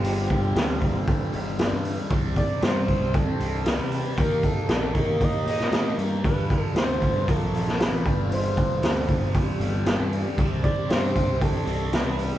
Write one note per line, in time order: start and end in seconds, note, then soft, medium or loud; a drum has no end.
0.00 0.52 G1 loud
0.00 0.52 G2 medium
0.00 0.55 D3 medium
0.00 2.08 G3 medium
0.00 2.06 C4 medium
0.00 2.08 D4 medium
0.00 2.06 F4 medium
0.00 1.03 G4 medium
0.04 0.57 G3 medium
0.04 open hi-hat medium
0.30 kick medium
0.30 open hi-hat soft
0.54 0.92 D2 medium
0.54 1.06 G2 medium
0.54 0.82 D3 medium
0.54 0.79 G3 medium
0.54 snare loud
0.54 open hi-hat medium
0.80 1.34 D3 medium
0.80 1.32 G3 medium
0.80 kick medium
0.80 open hi-hat soft
0.95 1.19 G1 medium
1.07 kick medium
1.07 open hi-hat medium
1.32 1.70 G1 medium
1.32 1.59 D3 medium
1.32 1.61 G3 medium
1.32 open hi-hat soft
1.58 2.09 G2 medium
1.58 2.09 D3 medium
1.58 2.11 G3 medium
1.58 snare medium
1.58 open hi-hat medium
1.72 1.97 G2 medium
1.85 open hi-hat soft
2.09 2.35 C2 medium
2.09 2.60 C3 medium
2.09 2.62 G3 medium
2.09 4.15 C4 medium
2.09 2.64 C4 medium
2.09 4.15 D4 medium
2.09 7.24 G4 medium
2.09 kick loud
2.09 open hi-hat medium
2.36 2.64 D5 medium
2.36 kick medium
2.36 open hi-hat soft
2.61 2.99 G2 medium
2.61 3.13 C3 medium
2.61 2.90 G3 medium
2.61 2.86 C4 medium
2.61 3.17 C5 medium
2.61 snare loud
2.61 open hi-hat medium
2.87 3.41 G3 medium
2.87 3.37 C4 medium
2.87 kick medium
2.87 open hi-hat soft
3.02 3.26 C2 medium
3.14 3.69 A4 medium
3.14 kick medium
3.14 open hi-hat medium
3.39 3.77 C2 medium
3.39 3.65 G3 medium
3.39 3.66 C4 medium
3.39 open hi-hat soft
3.64 4.15 C3 medium
3.64 4.18 G3 medium
3.64 4.17 C4 medium
3.64 4.19 B4 medium
3.64 snare medium
3.64 open hi-hat medium
3.79 4.03 C3 medium
3.92 open hi-hat soft
4.16 4.42 D#2 medium
4.16 4.66 D#3 medium
4.16 6.22 A#3 medium
4.16 4.68 A#3 medium
4.16 6.23 D#4 medium
4.16 4.70 D#4 medium
4.16 4.46 A#4 medium
4.16 kick loud
4.16 open hi-hat medium
4.43 4.98 A4 loud
4.43 kick medium
4.43 open hi-hat soft
4.67 5.06 A#1 medium
4.67 5.20 D#3 medium
4.67 4.96 A#3 medium
4.67 4.93 D#4 medium
4.67 snare loud
4.67 open hi-hat medium
4.94 5.49 A#3 medium
4.94 5.45 D#4 medium
4.94 5.25 A#4 medium
4.94 kick medium
4.94 open hi-hat soft
5.08 5.32 D#2 medium
5.21 5.48 D#5 loud
5.21 kick medium
5.21 open hi-hat medium
5.46 5.70 A#2 medium
5.46 5.72 A#3 medium
5.46 5.74 D#4 medium
5.46 5.96 D#5 loud
5.46 open hi-hat soft
5.60 snare soft
5.71 5.95 A2 medium
5.71 6.22 D#3 medium
5.71 6.23 A#3 medium
5.71 6.24 D#4 medium
5.71 snare loud
5.71 open hi-hat medium
5.98 6.21 G2 medium
5.98 open hi-hat soft
6.23 6.74 G2 medium
6.23 6.49 G2 medium
6.23 6.76 D3 medium
6.23 6.77 G3 medium
6.23 8.03 C4 medium
6.23 10.34 F4 medium
6.23 6.73 B4 medium
6.23 kick loud
6.23 open hi-hat medium
6.50 kick medium
6.50 open hi-hat soft
6.75 7.12 D2 medium
6.75 7.26 G2 medium
6.75 7.03 D3 medium
6.75 6.99 G3 medium
6.75 7.29 C5 loud
6.75 snare medium
6.75 open hi-hat medium
7.01 7.26 D3 soft
7.01 7.26 G3 medium
7.01 kick medium
7.01 open hi-hat soft
7.14 7.27 G2 medium
7.26 7.52 A#1 medium
7.26 7.77 A#2 medium
7.26 7.55 F3 medium
7.26 8.04 A#3 medium
7.26 7.52 A#3 loud
7.26 7.82 A4 loud
7.26 kick loud
7.26 open hi-hat medium
7.52 7.90 A#1 medium
7.52 7.81 A#3 medium
7.52 open hi-hat soft
7.57 7.79 F3 medium
7.68 snare soft
7.79 8.03 A#2 medium
7.79 8.04 F3 medium
7.79 8.05 A#3 medium
7.79 8.32 B4 medium
7.79 snare loud
7.79 open hi-hat medium
7.91 8.04 A1 medium
8.04 8.79 G1 medium
8.04 8.29 G2 medium
8.04 8.31 D3 medium
8.04 8.33 G3 medium
8.04 12.38 C4 medium
8.04 12.38 G4 medium
8.04 kick loud
8.04 open hi-hat soft
8.30 8.81 G2 medium
8.30 8.83 D3 medium
8.30 8.85 G3 medium
8.30 9.32 C5 medium
8.30 open hi-hat medium
8.57 kick medium
8.57 open hi-hat soft
8.82 9.19 D2 medium
8.82 9.34 G2 medium
8.82 9.10 D3 loud
8.82 9.07 G3 loud
8.82 snare medium
8.82 open hi-hat medium
9.08 9.62 D3 medium
9.08 9.59 G3 medium
9.08 kick medium
9.08 open hi-hat soft
9.21 9.46 G1 medium
9.35 kick medium
9.35 open hi-hat medium
9.60 9.97 G1 medium
9.60 9.86 D3 medium
9.60 9.88 G3 medium
9.60 open hi-hat soft
9.85 10.36 G2 medium
9.85 10.37 D3 medium
9.85 10.39 G3 medium
9.85 snare loud
9.85 open hi-hat medium
9.99 10.24 G2 medium
10.13 open hi-hat soft
10.37 10.62 C2 medium
10.37 10.88 C3 medium
10.37 10.90 G3 medium
10.37 10.92 C4 medium
10.37 12.38 D4 medium
10.37 kick loud
10.37 open hi-hat medium
10.63 10.92 D5 loud
10.63 kick medium
10.63 open hi-hat soft
10.89 11.26 G2 medium
10.89 11.41 C3 medium
10.89 11.18 G3 medium
10.89 11.14 C4 medium
10.89 11.42 C5 loud
10.89 snare loud
10.89 open hi-hat medium
11.15 11.68 G3 medium
11.15 11.65 C4 medium
11.15 kick medium
11.15 open hi-hat soft
11.28 11.53 C2 medium
11.41 11.95 A4 medium
11.41 kick loud
11.41 open hi-hat medium
11.67 12.03 C2 medium
11.67 11.93 G3 medium
11.67 11.94 C4 medium
11.67 open hi-hat soft
11.92 12.38 C3 medium
11.92 12.38 G3 medium
11.92 12.38 C4 medium
11.92 12.38 B4 medium
11.92 snare loud
11.92 open hi-hat medium
12.06 12.30 C2 medium
12.19 open hi-hat medium